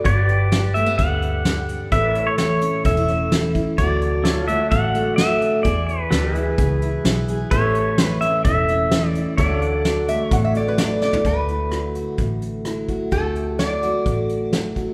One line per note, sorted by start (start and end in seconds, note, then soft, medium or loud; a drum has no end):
0.04 0.82 G1 loud
0.04 1.89 G2 medium
0.04 0.24 F#4 medium
0.04 1.89 G4 medium
0.04 1.90 B4 medium
0.04 0.77 D5 loud
0.04 1.90 D5 medium
0.04 kick loud
0.04 closed hi-hat medium
0.24 1.89 G4 medium
0.29 closed hi-hat medium
0.52 1.44 G3 medium
0.52 snare loud
0.52 closed hi-hat medium
0.74 0.86 A3 medium
0.74 0.97 E5 loud
0.74 closed hi-hat medium
0.86 1.21 B3 soft
0.98 1.76 D2 medium
0.98 1.89 D3 medium
0.98 1.68 D4 medium
0.98 1.92 F#5 loud
0.98 kick loud
0.98 closed hi-hat medium
1.22 1.89 B3 medium
1.22 closed hi-hat medium
1.45 1.89 G3 medium
1.45 snare loud
1.45 closed hi-hat medium
1.69 1.89 D4 medium
1.69 closed hi-hat medium
1.91 2.69 A1 medium
1.91 2.83 A2 medium
1.91 3.77 E4 medium
1.91 3.76 A4 medium
1.91 2.18 B4 medium
1.91 2.14 D5 medium
1.91 2.28 E5 loud
1.91 kick loud
1.91 closed hi-hat medium
2.14 3.77 C#5 medium
2.14 closed hi-hat medium
2.18 3.77 A4 medium
2.27 2.37 C#5 medium
2.38 3.30 E3 medium
2.38 2.85 C#5 medium
2.38 snare loud
2.38 closed hi-hat medium
2.61 2.84 C#4 medium
2.61 closed hi-hat medium
2.84 3.62 E1 medium
2.84 3.75 A2 medium
2.84 2.97 C#4 medium
2.84 3.51 E5 medium
2.84 kick loud
2.84 closed hi-hat medium
2.97 3.54 E4 soft
3.08 3.76 C#4 medium
3.08 closed hi-hat medium
3.32 3.78 E3 medium
3.32 snare loud
3.32 closed hi-hat medium
3.55 3.76 E4 medium
3.55 kick medium
3.55 closed hi-hat medium
3.78 4.56 D2 medium
3.78 5.62 D3 medium
3.78 4.24 F#3 medium
3.78 4.47 A3 medium
3.78 4.70 D4 medium
3.78 5.65 F#4 medium
3.78 4.50 D5 loud
3.78 kick loud
3.78 closed hi-hat medium
4.01 closed hi-hat medium
4.24 5.17 F#3 medium
4.24 4.49 E4 medium
4.24 5.63 A4 medium
4.24 4.46 C#5 medium
4.24 snare loud
4.24 closed hi-hat medium
4.46 4.94 A3 medium
4.46 5.63 F#4 medium
4.46 5.64 D5 medium
4.46 4.70 E5 medium
4.46 closed hi-hat medium
4.71 5.49 A1 medium
4.71 5.62 A2 medium
4.71 5.41 D4 medium
4.71 5.16 F#5 loud
4.71 kick loud
4.71 closed hi-hat medium
4.95 5.65 A3 medium
4.95 closed hi-hat medium
5.16 5.62 F#3 medium
5.16 5.65 E5 medium
5.16 snare loud
5.16 closed hi-hat medium
5.41 5.62 D4 medium
5.41 closed hi-hat medium
5.63 6.03 E2 medium
5.63 7.97 E3 medium
5.63 6.57 G#4 medium
5.63 5.88 D5 medium
5.63 kick loud
5.63 closed hi-hat medium
5.87 7.23 B4 medium
5.87 closed hi-hat medium
6.11 6.51 D2 medium
6.11 7.04 B3 medium
6.11 6.36 F#4 medium
6.11 6.36 A4 medium
6.11 6.37 D5 medium
6.11 snare loud
6.11 closed hi-hat medium
6.35 6.81 E4 medium
6.35 7.50 G#4 medium
6.35 7.50 B4 medium
6.35 7.50 E5 medium
6.35 closed hi-hat medium
6.58 6.98 C#2 medium
6.58 7.51 B2 medium
6.58 7.28 G#4 medium
6.58 kick loud
6.58 closed hi-hat medium
6.82 7.49 E4 medium
6.82 closed hi-hat medium
7.04 7.44 B1 medium
7.04 7.49 B3 medium
7.04 snare loud
7.04 closed hi-hat medium
7.28 7.49 G#4 medium
7.28 closed hi-hat medium
7.51 8.29 A1 loud
7.51 8.44 A2 medium
7.51 9.35 G4 medium
7.51 9.36 A4 medium
7.51 7.77 B4 medium
7.51 8.05 C#5 loud
7.51 9.37 E5 medium
7.51 kick loud
7.51 closed hi-hat medium
7.75 9.36 C#5 medium
7.75 closed hi-hat medium
7.98 8.90 E3 medium
7.98 snare loud
7.98 closed hi-hat medium
8.05 8.20 B4 loud
8.21 8.68 C#4 medium
8.21 8.43 E5 loud
8.21 closed hi-hat medium
8.44 9.22 E1 medium
8.44 9.35 A2 medium
8.44 9.14 E4 medium
8.44 9.08 E5 loud
8.44 kick loud
8.44 closed hi-hat medium
8.68 9.36 C#4 medium
8.68 closed hi-hat medium
8.91 9.38 E3 medium
8.91 snare loud
8.91 closed hi-hat medium
9.08 9.34 D5 loud
9.15 9.36 E4 medium
9.15 closed hi-hat medium
9.37 10.16 D2 medium
9.37 11.22 D3 medium
9.37 9.84 F#3 medium
9.37 10.08 A3 medium
9.37 10.31 D4 medium
9.37 11.94 F#4 medium
9.37 11.24 A4 medium
9.37 9.60 C#5 medium
9.37 10.25 D5 medium
9.37 9.66 E5 medium
9.37 kick loud
9.37 closed hi-hat medium
9.60 11.24 D5 medium
9.60 closed hi-hat medium
9.66 11.24 F#5 medium
9.85 10.77 F#3 medium
9.85 snare loud
9.85 closed hi-hat medium
10.08 10.55 A3 medium
10.08 10.31 E5 medium
10.08 closed hi-hat medium
10.25 10.74 C#5 medium
10.31 11.09 A1 medium
10.31 11.22 A2 medium
10.31 11.01 D4 medium
10.31 10.43 F#5 medium
10.31 kick loud
10.31 closed hi-hat medium
10.44 10.55 E5 medium
10.55 11.24 A3 medium
10.55 10.67 D5 medium
10.55 closed hi-hat medium
10.68 10.79 B4 medium
10.78 11.22 F#3 medium
10.78 11.01 D5 medium
10.78 snare loud
10.78 closed hi-hat medium
11.02 11.22 D4 medium
11.02 11.24 D5 medium
11.02 snare medium
11.13 floor tom medium
11.25 12.02 D2 medium
11.25 13.11 D3 medium
11.25 13.12 A3 medium
11.25 13.18 B4 medium
11.25 kick medium
11.25 closed hi-hat medium
11.48 12.66 E4 medium
11.48 closed hi-hat medium
11.71 12.65 F#3 medium
11.71 cross-stick loud
11.71 closed hi-hat medium
11.95 12.88 F#4 medium
11.95 closed hi-hat medium
12.18 12.96 A1 medium
12.18 13.09 A2 medium
12.18 kick loud
12.18 closed hi-hat medium
12.42 closed hi-hat medium
12.65 13.39 F#3 medium
12.65 13.14 E4 medium
12.65 cross-stick loud
12.65 closed hi-hat medium
12.88 13.82 F#4 medium
12.88 kick medium
12.88 closed hi-hat medium
13.11 13.90 D2 medium
13.11 14.94 D3 medium
13.11 14.94 A3 medium
13.11 13.56 A4 medium
13.11 kick medium
13.11 closed hi-hat medium
13.35 14.53 E4 medium
13.35 closed hi-hat soft
13.59 14.52 F#3 medium
13.59 14.72 D5 medium
13.59 snare medium
13.59 closed hi-hat medium
13.83 14.76 F#4 medium
13.83 closed hi-hat medium
14.06 14.84 A1 medium
14.06 14.94 A2 medium
14.06 kick loud
14.06 closed hi-hat medium
14.29 closed hi-hat medium
14.53 14.94 F#3 medium
14.53 14.94 E4 medium
14.53 snare loud
14.53 closed hi-hat medium
14.76 14.94 F#4 medium
14.76 kick medium
14.76 closed hi-hat medium